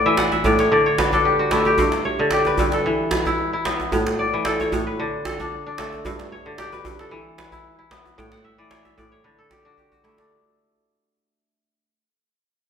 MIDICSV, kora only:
0, 0, Header, 1, 2, 480
1, 0, Start_track
1, 0, Tempo, 531915
1, 1610, Time_signature, 4, 2, 24, 8
1, 11453, End_track
2, 0, Start_track
2, 0, Title_t, "Kora"
2, 0, Program_c, 0, 46
2, 0, Note_on_c, 0, 45, 91
2, 0, Note_on_c, 0, 59, 74
2, 0, Note_on_c, 0, 64, 65
2, 0, Note_on_c, 0, 74, 70
2, 52, Note_on_c, 0, 52, 76
2, 53, Note_on_c, 0, 76, 71
2, 165, Note_on_c, 0, 78, 80
2, 288, Note_off_c, 0, 76, 0
2, 291, Note_on_c, 0, 76, 72
2, 394, Note_off_c, 0, 45, 0
2, 403, Note_off_c, 0, 74, 0
2, 405, Note_on_c, 0, 45, 76
2, 407, Note_on_c, 0, 74, 65
2, 537, Note_on_c, 0, 73, 69
2, 645, Note_off_c, 0, 74, 0
2, 646, Note_on_c, 0, 50, 79
2, 648, Note_on_c, 0, 74, 70
2, 690, Note_off_c, 0, 45, 0
2, 690, Note_off_c, 0, 52, 0
2, 740, Note_off_c, 0, 64, 0
2, 773, Note_off_c, 0, 73, 0
2, 777, Note_on_c, 0, 73, 76
2, 889, Note_on_c, 0, 71, 72
2, 1018, Note_on_c, 0, 62, 79
2, 1021, Note_on_c, 0, 69, 67
2, 1036, Note_off_c, 0, 78, 0
2, 1073, Note_off_c, 0, 73, 0
2, 1124, Note_off_c, 0, 59, 0
2, 1130, Note_on_c, 0, 67, 68
2, 1224, Note_off_c, 0, 76, 0
2, 1257, Note_on_c, 0, 66, 73
2, 1367, Note_on_c, 0, 57, 75
2, 1368, Note_on_c, 0, 64, 66
2, 1495, Note_off_c, 0, 67, 0
2, 1499, Note_on_c, 0, 67, 63
2, 1553, Note_off_c, 0, 66, 0
2, 1610, Note_on_c, 0, 43, 90
2, 1648, Note_off_c, 0, 74, 0
2, 1655, Note_off_c, 0, 50, 0
2, 1850, Note_on_c, 0, 73, 68
2, 1904, Note_off_c, 0, 62, 0
2, 1980, Note_on_c, 0, 50, 76
2, 1998, Note_off_c, 0, 71, 0
2, 2093, Note_off_c, 0, 67, 0
2, 2097, Note_on_c, 0, 67, 74
2, 2210, Note_off_c, 0, 69, 0
2, 2225, Note_on_c, 0, 71, 66
2, 2325, Note_off_c, 0, 43, 0
2, 2336, Note_on_c, 0, 43, 79
2, 2466, Note_on_c, 0, 69, 65
2, 2579, Note_on_c, 0, 52, 86
2, 2619, Note_off_c, 0, 43, 0
2, 2619, Note_off_c, 0, 50, 0
2, 2782, Note_off_c, 0, 64, 0
2, 2813, Note_off_c, 0, 71, 0
2, 2816, Note_on_c, 0, 71, 65
2, 2886, Note_off_c, 0, 73, 0
2, 2946, Note_on_c, 0, 64, 74
2, 3169, Note_off_c, 0, 57, 0
2, 3185, Note_off_c, 0, 64, 0
2, 3188, Note_on_c, 0, 64, 67
2, 3302, Note_on_c, 0, 59, 77
2, 3371, Note_off_c, 0, 67, 0
2, 3540, Note_on_c, 0, 45, 90
2, 3583, Note_off_c, 0, 52, 0
2, 3655, Note_off_c, 0, 69, 0
2, 3781, Note_on_c, 0, 74, 66
2, 3913, Note_on_c, 0, 52, 73
2, 3926, Note_off_c, 0, 71, 0
2, 4026, Note_on_c, 0, 69, 76
2, 4156, Note_on_c, 0, 73, 70
2, 4211, Note_off_c, 0, 74, 0
2, 4254, Note_off_c, 0, 45, 0
2, 4265, Note_on_c, 0, 45, 82
2, 4392, Note_on_c, 0, 71, 68
2, 4508, Note_on_c, 0, 50, 83
2, 4545, Note_off_c, 0, 45, 0
2, 4545, Note_off_c, 0, 52, 0
2, 4562, Note_off_c, 0, 73, 0
2, 4602, Note_off_c, 0, 64, 0
2, 4742, Note_off_c, 0, 69, 0
2, 4745, Note_on_c, 0, 69, 64
2, 4872, Note_on_c, 0, 62, 76
2, 4984, Note_off_c, 0, 59, 0
2, 5108, Note_off_c, 0, 62, 0
2, 5112, Note_on_c, 0, 62, 64
2, 5224, Note_on_c, 0, 57, 77
2, 5465, Note_on_c, 0, 43, 98
2, 5502, Note_off_c, 0, 71, 0
2, 5506, Note_off_c, 0, 50, 0
2, 5705, Note_on_c, 0, 73, 69
2, 5759, Note_off_c, 0, 62, 0
2, 5829, Note_on_c, 0, 50, 78
2, 5934, Note_off_c, 0, 69, 0
2, 5945, Note_on_c, 0, 67, 73
2, 6070, Note_on_c, 0, 71, 71
2, 6170, Note_off_c, 0, 43, 0
2, 6181, Note_on_c, 0, 43, 75
2, 6310, Note_on_c, 0, 69, 67
2, 6418, Note_on_c, 0, 52, 88
2, 6466, Note_off_c, 0, 43, 0
2, 6466, Note_off_c, 0, 50, 0
2, 6658, Note_off_c, 0, 71, 0
2, 6662, Note_on_c, 0, 71, 68
2, 6740, Note_off_c, 0, 73, 0
2, 6788, Note_on_c, 0, 64, 82
2, 7023, Note_off_c, 0, 64, 0
2, 7026, Note_off_c, 0, 57, 0
2, 7027, Note_on_c, 0, 64, 65
2, 7140, Note_on_c, 0, 59, 75
2, 7219, Note_off_c, 0, 67, 0
2, 7382, Note_on_c, 0, 45, 99
2, 7382, Note_on_c, 0, 79, 77
2, 7424, Note_off_c, 0, 52, 0
2, 7499, Note_off_c, 0, 69, 0
2, 7508, Note_on_c, 0, 78, 73
2, 7621, Note_on_c, 0, 76, 76
2, 7746, Note_on_c, 0, 52, 79
2, 7749, Note_on_c, 0, 74, 71
2, 7771, Note_off_c, 0, 71, 0
2, 7857, Note_on_c, 0, 73, 77
2, 7982, Note_off_c, 0, 76, 0
2, 7986, Note_on_c, 0, 76, 72
2, 8089, Note_off_c, 0, 45, 0
2, 8097, Note_off_c, 0, 74, 0
2, 8099, Note_on_c, 0, 45, 79
2, 8100, Note_on_c, 0, 74, 68
2, 8154, Note_off_c, 0, 73, 0
2, 8223, Note_off_c, 0, 79, 0
2, 8227, Note_on_c, 0, 73, 71
2, 8340, Note_on_c, 0, 50, 78
2, 8341, Note_on_c, 0, 71, 69
2, 8378, Note_off_c, 0, 78, 0
2, 8382, Note_off_c, 0, 45, 0
2, 8382, Note_off_c, 0, 52, 0
2, 8441, Note_off_c, 0, 64, 0
2, 8469, Note_on_c, 0, 69, 72
2, 8583, Note_on_c, 0, 67, 73
2, 8708, Note_on_c, 0, 62, 78
2, 8710, Note_on_c, 0, 66, 71
2, 8762, Note_off_c, 0, 73, 0
2, 8818, Note_off_c, 0, 67, 0
2, 8821, Note_off_c, 0, 59, 0
2, 8822, Note_on_c, 0, 67, 67
2, 8918, Note_off_c, 0, 76, 0
2, 8945, Note_off_c, 0, 66, 0
2, 8949, Note_on_c, 0, 66, 67
2, 9059, Note_on_c, 0, 57, 77
2, 9059, Note_on_c, 0, 64, 71
2, 9100, Note_off_c, 0, 74, 0
2, 9181, Note_off_c, 0, 62, 0
2, 9185, Note_on_c, 0, 62, 64
2, 9338, Note_off_c, 0, 50, 0
2, 9450, Note_off_c, 0, 71, 0
2, 9658, Note_off_c, 0, 69, 0
2, 10096, Note_off_c, 0, 67, 0
2, 10268, Note_off_c, 0, 66, 0
2, 10473, Note_off_c, 0, 64, 0
2, 10700, Note_off_c, 0, 62, 0
2, 10861, Note_off_c, 0, 57, 0
2, 11453, End_track
0, 0, End_of_file